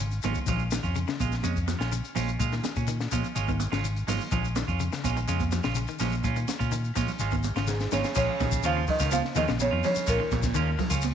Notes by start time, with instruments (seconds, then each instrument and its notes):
Already playing: fingered electric bass G#1
0.00 closed hi-hat
0.11 closed hi-hat, shekere
0.22 fingered electric bass G#1, clean electric guitar D#3 G#3 C#4 F4, closed hi-hat, high conga, low conga, shekere
0.34 kick, shekere
0.46 fingered electric bass A#1, clean electric guitar F3 G#3 C#4 F4, kick, closed hi-hat, low conga, shekere
0.59 shekere
0.71 clean electric guitar D#3, snare, closed hi-hat, high conga, shekere
0.83 fingered electric bass F2, clean electric guitar C#4 F4, kick, shekere
0.95 clean electric guitar C#3, closed hi-hat, shekere
1.07 clean electric guitar C#3, snare, shekere
1.20 fingered electric bass A#1, clean electric guitar G#3 F4, muted clean electric guitar stroke, kick, closed hi-hat, high conga, shekere
1.32 snare, shekere
1.43 fingered electric bass F2, clean electric guitar C#3 G#3 C#4, muted clean electric guitar stroke, closed hi-hat, high conga, shekere
1.56 kick, closed hi-hat, shekere
1.68 clean electric guitar F3, snare, closed hi-hat, high conga, shekere
1.79 fingered electric bass A#1, clean electric guitar C#4 F4, snare, closed hi-hat, shekere
1.92 clean electric guitar C#3, closed hi-hat, shekere
2.04 closed hi-hat, shekere
2.15 fingered electric bass A#1, clean electric guitar F3 G#3 C#4 F4, open hi-hat, high conga, low conga, shekere
2.29 closed hi-hat, shekere
2.39 fingered electric bass A#2, clean electric guitar G#3 F4, muted clean electric guitar stroke, kick, closed hi-hat, low conga, shekere
2.52 clean electric guitar D#3, snare, closed hi-hat, shekere
2.64 muted fingered electric bass stroke, snare, closed hi-hat, high conga, shekere
2.76 fingered electric bass A#2, clean electric guitar C#3 C#4, kick, closed hi-hat, shekere
2.87 clean electric guitar D#3, closed hi-hat, shekere
3.00 snare, shekere
3.12 fingered electric bass A#2, clean electric guitar F3 G#3 C#4 F4, kick, closed hi-hat, high conga, shekere
3.24 shekere
3.35 fingered electric bass G#1, clean electric guitar G#3 C#4 F4, closed hi-hat, shekere
3.48 clean electric guitar D#3, kick, high conga, shekere
3.60 closed hi-hat, high conga, shekere
3.72 fingered electric bass G#1, clean electric guitar C#3 C#4 F4, snare, closed hi-hat, shekere
3.84 closed hi-hat, shekere
3.96 closed hi-hat, shekere
4.07 fingered electric bass G#1, clean electric guitar D#3 G#3 C#4 F4, open hi-hat, high conga, low conga, shekere
4.21 shekere
4.32 fingered electric bass A#1, clean electric guitar F3 G#3 C#4 F4, kick, closed hi-hat, low conga, shekere
4.44 shekere
4.56 clean electric guitar D#3, snare, closed hi-hat, high conga, shekere
4.68 fingered electric bass F2, clean electric guitar C#4 F4, kick, shekere
4.80 clean electric guitar C#3, closed hi-hat, shekere
4.92 clean electric guitar C#3, snare, shekere
5.04 fingered electric bass A#1, clean electric guitar G#3 C#4 F4, kick, closed hi-hat, high conga, shekere
5.17 clean electric guitar D#3, shekere
5.28 fingered electric bass F2, clean electric guitar C#3 G#3 C#4 F4, closed hi-hat, shekere
5.40 kick, closed hi-hat, high conga, shekere
5.51 clean electric guitar F3, snare, closed hi-hat, high conga, shekere
5.63 fingered electric bass A#1, clean electric guitar C#3 C#4 F4, snare, closed hi-hat, shekere
5.75 clean electric guitar C#3, closed hi-hat, shekere
5.87 clean electric guitar D#3, closed hi-hat, shekere
5.99 fingered electric bass A#1, clean electric guitar F3 G#3 C#4 F4, snare, open hi-hat, high conga, low conga, shekere
6.11 closed hi-hat, shekere
6.23 fingered electric bass A#2, clean electric guitar C#4 F4, muted clean electric guitar stroke, kick, closed hi-hat, low conga, shekere
6.36 clean electric guitar D#3, closed hi-hat, shekere
6.48 muted fingered electric bass stroke, snare, closed hi-hat, high conga, shekere
6.59 fingered electric bass A#2, clean electric guitar C#3 C#4 F4, kick, closed hi-hat, shekere
6.72 clean electric guitar D#3, closed hi-hat, shekere
6.84 shekere
6.95 fingered electric bass A#2, clean electric guitar F3 G#3 C#4 F4, kick, open hi-hat, high conga, shekere
7.08 low conga, shekere
7.19 fingered electric bass G#1, clean electric guitar G#3 C#4 F4, closed hi-hat, shekere
7.31 clean electric guitar D#3, kick, high conga, shekere
7.43 closed hi-hat, high conga, shekere
7.55 fingered electric bass G#1, clean electric guitar C#3 C#4 F4, snare, closed hi-hat, shekere
7.67 baritone saxophone G#2, marimba G#4, snare, shekere
7.80 snare, shekere
7.91 fingered electric bass G#1, baritone saxophone C#3, clean electric guitar D#3 G#3 C#4 F4, marimba C#5, snare, high conga, low conga, shekere
8.04 snare, shekere
8.15 fingered electric bass A#1, baritone saxophone C#3, clean electric guitar F3 G#3 C#4 F4, marimba C#5, kick, crash, shekere
8.40 fingered electric bass A#1, clean electric guitar D#3, kick, snare, ride bell, high conga, shekere
8.52 kick, shekere
8.63 fingered electric bass D#2, clean electric guitar C#3 G#3 C#4 F4, baritone saxophone F3, marimba F5, ride bell, shekere
8.77 clean electric guitar C#3
8.87 baritone saxophone D#3, marimba D#5, kick, open hi-hat, low conga, shekere
8.99 fingered electric bass C#2, clean electric guitar D#3 C#4 F4, kick, snare, shekere
9.11 clean electric guitar C#3, baritone saxophone F3, marimba F5, ride bell, high conga, shekere
9.25 snare
9.35 fingered electric bass D#2, baritone saxophone D#3, clean electric guitar F3 G#3 C#4 F4, marimba D#5, ride bell, high conga, shekere
9.47 fingered electric bass A#1, clean electric guitar C#3, snare, high conga, shekere
9.59 baritone saxophone C#3, marimba C#5, ride bell, high conga, shekere
9.71 fingered electric bass F2, clean electric guitar D#3 C#4 F4
9.83 baritone saxophone C#3, clean electric guitar F3, marimba C#5, open hi-hat, low conga, shekere
9.95 muted fingered electric bass stroke, shekere
10.07 fingered electric bass A#1, baritone saxophone A#2, clean electric guitar G#3 C#4 F4, marimba A#4, kick, snare, ride bell, shekere
10.20 clean electric guitar D#3
10.31 fingered electric bass A#1, kick, snare, ride bell, high conga, shekere
10.43 kick, snare, ride bell, high conga, shekere
10.54 fingered electric bass D#2, clean electric guitar D#3 G#3 C#4 F4, ride bell, shekere
10.79 clean electric guitar F3, kick, open hi-hat, low conga, shekere
10.90 fingered electric bass C#2, clean electric guitar C#4 F4, kick, ride bell, shekere
11.01 ride bell, high conga, shekere